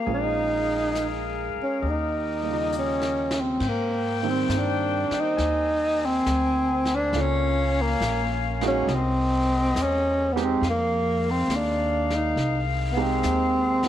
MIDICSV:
0, 0, Header, 1, 7, 480
1, 0, Start_track
1, 0, Tempo, 887574
1, 34, Time_signature, 4, 2, 24, 8
1, 2914, Tempo, 873362
1, 7583, End_track
2, 0, Start_track
2, 0, Title_t, "Saxophone section"
2, 0, Program_c, 0, 65
2, 0, Note_on_c, 0, 77, 66
2, 34, Note_on_c, 0, 68, 60
2, 34, Note_on_c, 0, 70, 57
2, 961, Note_off_c, 0, 77, 0
2, 977, Note_off_c, 0, 68, 0
2, 988, Note_on_c, 0, 67, 49
2, 988, Note_on_c, 0, 75, 65
2, 1850, Note_off_c, 0, 67, 0
2, 1850, Note_off_c, 0, 70, 0
2, 1850, Note_off_c, 0, 75, 0
2, 1942, Note_on_c, 0, 72, 57
2, 1946, Note_on_c, 0, 58, 55
2, 1949, Note_on_c, 0, 60, 62
2, 1950, Note_on_c, 0, 79, 67
2, 2899, Note_on_c, 0, 80, 70
2, 2901, Note_off_c, 0, 79, 0
2, 3849, Note_off_c, 0, 72, 0
2, 3853, Note_off_c, 0, 60, 0
2, 3857, Note_off_c, 0, 80, 0
2, 3873, Note_on_c, 0, 61, 70
2, 3878, Note_on_c, 0, 77, 74
2, 4822, Note_off_c, 0, 61, 0
2, 4824, Note_off_c, 0, 77, 0
2, 4831, Note_on_c, 0, 56, 54
2, 4835, Note_on_c, 0, 75, 68
2, 4836, Note_on_c, 0, 48, 61
2, 5703, Note_off_c, 0, 48, 0
2, 5703, Note_off_c, 0, 58, 0
2, 5703, Note_off_c, 0, 75, 0
2, 5797, Note_on_c, 0, 77, 80
2, 5799, Note_on_c, 0, 51, 68
2, 7583, Note_off_c, 0, 51, 0
2, 7583, Note_off_c, 0, 56, 0
2, 7583, Note_off_c, 0, 77, 0
2, 7583, End_track
3, 0, Start_track
3, 0, Title_t, "Grand piano"
3, 0, Program_c, 1, 0
3, 0, Control_c, 1, 64, 127
3, 34, Note_on_c, 1, 56, 39
3, 37, Note_on_c, 1, 72, 35
3, 39, Note_on_c, 1, 61, 32
3, 41, Control_c, 1, 64, 0
3, 41, Note_on_c, 1, 65, 42
3, 129, Control_c, 1, 64, 127
3, 987, Note_off_c, 1, 56, 0
3, 988, Note_off_c, 1, 72, 0
3, 989, Note_off_c, 1, 61, 0
3, 990, Note_off_c, 1, 65, 0
3, 994, Control_c, 1, 64, 0
3, 1099, Control_c, 1, 64, 127
3, 1303, Note_on_c, 1, 55, 36
3, 1320, Note_on_c, 1, 58, 34
3, 1342, Note_on_c, 1, 49, 33
3, 1361, Note_on_c, 1, 65, 41
3, 1944, Note_off_c, 1, 55, 0
3, 1952, Note_off_c, 1, 58, 0
3, 1959, Control_c, 1, 64, 0
3, 1963, Note_off_c, 1, 49, 0
3, 1973, Note_off_c, 1, 65, 0
3, 2059, Control_c, 1, 64, 127
3, 2284, Note_on_c, 1, 55, 47
3, 2287, Note_on_c, 1, 58, 42
3, 2287, Note_on_c, 1, 60, 45
3, 2290, Note_on_c, 1, 51, 53
3, 2883, Note_off_c, 1, 55, 0
3, 2884, Note_off_c, 1, 58, 0
3, 2884, Note_off_c, 1, 60, 0
3, 2886, Note_off_c, 1, 51, 0
3, 3878, Note_on_c, 1, 58, 41
3, 3880, Control_c, 1, 64, 0
3, 3882, Note_on_c, 1, 69, 42
3, 3885, Note_on_c, 1, 61, 41
3, 3886, Note_on_c, 1, 65, 52
3, 3973, Control_c, 1, 64, 127
3, 4618, Note_off_c, 1, 58, 0
3, 4620, Note_off_c, 1, 69, 0
3, 4622, Note_off_c, 1, 61, 0
3, 4622, Note_off_c, 1, 65, 0
3, 4689, Note_on_c, 1, 56, 51
3, 4690, Note_on_c, 1, 58, 51
3, 4690, Note_on_c, 1, 63, 53
3, 4693, Note_on_c, 1, 66, 67
3, 4820, Note_off_c, 1, 56, 0
3, 4820, Note_off_c, 1, 58, 0
3, 4821, Note_off_c, 1, 63, 0
3, 4822, Note_off_c, 1, 66, 0
3, 4839, Control_c, 1, 64, 0
3, 4931, Control_c, 1, 64, 127
3, 5644, Note_on_c, 1, 60, 51
3, 5646, Note_on_c, 1, 67, 66
3, 5647, Note_on_c, 1, 56, 56
3, 5649, Note_on_c, 1, 63, 54
3, 5777, Note_off_c, 1, 60, 0
3, 5778, Note_off_c, 1, 56, 0
3, 5778, Note_off_c, 1, 67, 0
3, 5779, Note_off_c, 1, 63, 0
3, 5796, Control_c, 1, 64, 0
3, 5909, Control_c, 1, 64, 127
3, 7079, Note_on_c, 1, 56, 56
3, 7081, Note_on_c, 1, 60, 45
3, 7081, Note_on_c, 1, 63, 50
3, 7084, Note_on_c, 1, 67, 53
3, 7214, Note_off_c, 1, 56, 0
3, 7214, Note_off_c, 1, 60, 0
3, 7215, Note_off_c, 1, 63, 0
3, 7216, Note_off_c, 1, 67, 0
3, 7561, Note_on_c, 1, 58, 47
3, 7562, Note_on_c, 1, 51, 47
3, 7563, Note_on_c, 1, 59, 47
3, 7565, Note_on_c, 1, 66, 60
3, 7583, Note_off_c, 1, 51, 0
3, 7583, Note_off_c, 1, 58, 0
3, 7583, Note_off_c, 1, 59, 0
3, 7583, Note_off_c, 1, 66, 0
3, 7583, End_track
4, 0, Start_track
4, 0, Title_t, "Tenor saxophone"
4, 0, Program_c, 2, 66
4, 0, Note_on_c, 2, 58, 62
4, 60, Note_off_c, 2, 58, 0
4, 76, Note_on_c, 2, 63, 82
4, 634, Note_off_c, 2, 63, 0
4, 880, Note_on_c, 2, 61, 59
4, 1022, Note_on_c, 2, 63, 58
4, 1030, Note_off_c, 2, 61, 0
4, 1487, Note_off_c, 2, 63, 0
4, 1508, Note_on_c, 2, 61, 71
4, 1843, Note_on_c, 2, 60, 71
4, 1851, Note_off_c, 2, 61, 0
4, 1991, Note_on_c, 2, 58, 82
4, 1999, Note_off_c, 2, 60, 0
4, 2302, Note_off_c, 2, 58, 0
4, 2323, Note_on_c, 2, 60, 66
4, 2429, Note_off_c, 2, 60, 0
4, 2429, Note_on_c, 2, 60, 55
4, 2477, Note_on_c, 2, 62, 69
4, 2485, Note_off_c, 2, 60, 0
4, 2813, Note_on_c, 2, 63, 81
4, 2821, Note_off_c, 2, 62, 0
4, 3280, Note_on_c, 2, 60, 79
4, 3289, Note_off_c, 2, 63, 0
4, 3774, Note_on_c, 2, 62, 84
4, 3782, Note_off_c, 2, 60, 0
4, 3912, Note_on_c, 2, 61, 84
4, 3920, Note_off_c, 2, 62, 0
4, 4246, Note_on_c, 2, 58, 71
4, 4255, Note_off_c, 2, 61, 0
4, 4502, Note_off_c, 2, 58, 0
4, 4721, Note_on_c, 2, 61, 75
4, 4874, Note_on_c, 2, 60, 81
4, 4882, Note_off_c, 2, 61, 0
4, 5354, Note_on_c, 2, 61, 80
4, 5362, Note_off_c, 2, 60, 0
4, 5629, Note_on_c, 2, 59, 63
4, 5637, Note_off_c, 2, 61, 0
4, 5688, Note_on_c, 2, 60, 75
4, 5696, Note_off_c, 2, 59, 0
4, 5814, Note_off_c, 2, 60, 0
4, 5831, Note_on_c, 2, 58, 84
4, 6166, Note_on_c, 2, 60, 70
4, 6174, Note_off_c, 2, 58, 0
4, 6308, Note_on_c, 2, 62, 62
4, 6316, Note_off_c, 2, 60, 0
4, 6633, Note_on_c, 2, 63, 66
4, 6641, Note_off_c, 2, 62, 0
4, 6893, Note_off_c, 2, 63, 0
4, 7054, Note_on_c, 2, 59, 59
4, 7107, Note_on_c, 2, 60, 76
4, 7115, Note_off_c, 2, 59, 0
4, 7583, Note_off_c, 2, 60, 0
4, 7583, End_track
5, 0, Start_track
5, 0, Title_t, "Upright bass"
5, 0, Program_c, 3, 32
5, 36, Note_on_c, 3, 34, 66
5, 816, Note_off_c, 3, 34, 0
5, 987, Note_on_c, 3, 39, 69
5, 1930, Note_off_c, 3, 39, 0
5, 1949, Note_on_c, 3, 44, 62
5, 2417, Note_off_c, 3, 44, 0
5, 2426, Note_on_c, 3, 43, 61
5, 2738, Note_off_c, 3, 43, 0
5, 2911, Note_on_c, 3, 39, 66
5, 3378, Note_off_c, 3, 39, 0
5, 3392, Note_on_c, 3, 38, 75
5, 3858, Note_off_c, 3, 38, 0
5, 3868, Note_on_c, 3, 37, 66
5, 4335, Note_off_c, 3, 37, 0
5, 4351, Note_on_c, 3, 34, 78
5, 4816, Note_off_c, 3, 34, 0
5, 4830, Note_on_c, 3, 36, 73
5, 5295, Note_off_c, 3, 36, 0
5, 5308, Note_on_c, 3, 40, 78
5, 5774, Note_off_c, 3, 40, 0
5, 5785, Note_on_c, 3, 41, 77
5, 6252, Note_off_c, 3, 41, 0
5, 6262, Note_on_c, 3, 39, 71
5, 6729, Note_off_c, 3, 39, 0
5, 6745, Note_on_c, 3, 36, 70
5, 7212, Note_off_c, 3, 36, 0
5, 7228, Note_on_c, 3, 39, 69
5, 7583, Note_off_c, 3, 39, 0
5, 7583, End_track
6, 0, Start_track
6, 0, Title_t, "Muted upright bass strokes"
6, 845, Note_on_c, 9, 29, 29
6, 899, Note_off_c, 9, 29, 0
6, 2760, Note_on_c, 9, 29, 30
6, 2814, Note_off_c, 9, 29, 0
6, 7583, End_track
7, 0, Start_track
7, 0, Title_t, "Drums"
7, 40, Note_on_c, 9, 25, 27
7, 514, Note_on_c, 9, 38, 31
7, 514, Note_on_c, 9, 44, 42
7, 568, Note_off_c, 9, 38, 0
7, 568, Note_off_c, 9, 44, 0
7, 994, Note_off_c, 9, 25, 0
7, 994, Note_on_c, 9, 25, 32
7, 1472, Note_on_c, 9, 44, 37
7, 1526, Note_off_c, 9, 44, 0
7, 1630, Note_on_c, 9, 38, 35
7, 1684, Note_off_c, 9, 38, 0
7, 1788, Note_on_c, 9, 38, 55
7, 1842, Note_off_c, 9, 38, 0
7, 1948, Note_off_c, 9, 25, 0
7, 1948, Note_on_c, 9, 25, 43
7, 1948, Note_on_c, 9, 38, 27
7, 1948, Note_on_c, 9, 51, 46
7, 1950, Note_on_c, 9, 36, 53
7, 2002, Note_off_c, 9, 38, 0
7, 2002, Note_off_c, 9, 51, 0
7, 2004, Note_off_c, 9, 36, 0
7, 2431, Note_on_c, 9, 38, 43
7, 2431, Note_on_c, 9, 44, 46
7, 2485, Note_off_c, 9, 38, 0
7, 2485, Note_off_c, 9, 44, 0
7, 2764, Note_on_c, 9, 38, 31
7, 2818, Note_off_c, 9, 38, 0
7, 2911, Note_off_c, 9, 25, 0
7, 2911, Note_on_c, 9, 25, 37
7, 2911, Note_on_c, 9, 38, 32
7, 2966, Note_off_c, 9, 38, 0
7, 3395, Note_on_c, 9, 38, 44
7, 3395, Note_on_c, 9, 44, 49
7, 3450, Note_off_c, 9, 38, 0
7, 3450, Note_off_c, 9, 44, 0
7, 3719, Note_on_c, 9, 38, 28
7, 3774, Note_off_c, 9, 38, 0
7, 3870, Note_off_c, 9, 25, 0
7, 3870, Note_on_c, 9, 25, 36
7, 3870, Note_on_c, 9, 38, 32
7, 3925, Note_off_c, 9, 38, 0
7, 4356, Note_on_c, 9, 38, 41
7, 4356, Note_on_c, 9, 44, 42
7, 4411, Note_off_c, 9, 38, 0
7, 4411, Note_off_c, 9, 44, 0
7, 4686, Note_on_c, 9, 38, 33
7, 4741, Note_off_c, 9, 38, 0
7, 4835, Note_off_c, 9, 25, 0
7, 4835, Note_on_c, 9, 25, 36
7, 4835, Note_on_c, 9, 38, 35
7, 4890, Note_off_c, 9, 38, 0
7, 5316, Note_on_c, 9, 38, 42
7, 5316, Note_on_c, 9, 44, 48
7, 5371, Note_off_c, 9, 38, 0
7, 5371, Note_off_c, 9, 44, 0
7, 5652, Note_on_c, 9, 38, 32
7, 5707, Note_off_c, 9, 38, 0
7, 5794, Note_off_c, 9, 25, 0
7, 5794, Note_on_c, 9, 25, 39
7, 5794, Note_on_c, 9, 38, 29
7, 5849, Note_off_c, 9, 38, 0
7, 6272, Note_on_c, 9, 38, 43
7, 6272, Note_on_c, 9, 44, 41
7, 6327, Note_off_c, 9, 38, 0
7, 6327, Note_off_c, 9, 44, 0
7, 6605, Note_on_c, 9, 38, 30
7, 6660, Note_off_c, 9, 38, 0
7, 6752, Note_off_c, 9, 25, 0
7, 6752, Note_on_c, 9, 25, 36
7, 6752, Note_on_c, 9, 38, 32
7, 6807, Note_off_c, 9, 38, 0
7, 7225, Note_on_c, 9, 38, 43
7, 7225, Note_on_c, 9, 44, 41
7, 7280, Note_off_c, 9, 38, 0
7, 7280, Note_off_c, 9, 44, 0
7, 7552, Note_on_c, 9, 38, 29
7, 7583, Note_off_c, 9, 25, 0
7, 7583, Note_off_c, 9, 38, 0
7, 7583, End_track
0, 0, End_of_file